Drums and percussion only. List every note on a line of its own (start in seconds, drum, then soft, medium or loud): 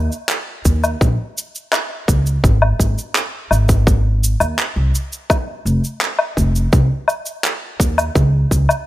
0.12 cabasa soft
0.29 clap loud
0.29 cabasa soft
0.65 kick medium
0.65 cabasa medium
0.84 cabasa medium
0.84 low woodblock medium
1.01 kick loud
1.01 cabasa soft
1.38 cabasa medium
1.55 cabasa medium
1.73 clap medium
1.73 cabasa soft
1.73 low woodblock medium
2.08 kick medium
2.08 cabasa medium
2.26 cabasa medium
2.44 kick loud
2.44 cabasa soft
2.62 low woodblock medium
2.80 kick medium
2.80 cabasa medium
2.98 cabasa medium
3.15 clap medium
3.15 cabasa soft
3.51 cabasa medium
3.51 low woodblock medium
3.69 kick medium
3.69 cabasa medium
3.87 kick loud
3.87 cabasa soft
4.24 cabasa medium
4.40 cabasa medium
4.40 low woodblock medium
4.58 clap medium
4.58 cabasa soft
4.95 cabasa medium
5.12 cabasa medium
5.30 kick loud
5.30 cabasa soft
5.30 low woodblock medium
5.66 cabasa medium
5.84 cabasa medium
6.01 clap loud
6.01 cabasa soft
6.19 low woodblock medium
6.37 kick medium
6.37 cabasa medium
6.55 cabasa medium
6.73 kick loud
6.73 cabasa soft
7.08 cabasa medium
7.08 low woodblock medium
7.26 cabasa medium
7.44 clap medium
7.44 cabasa medium
7.80 kick loud
7.80 cabasa medium
7.98 cabasa medium
7.98 low woodblock medium
8.15 kick loud
8.15 cabasa soft
8.51 kick medium
8.51 cabasa medium
8.69 cabasa soft
8.69 low woodblock medium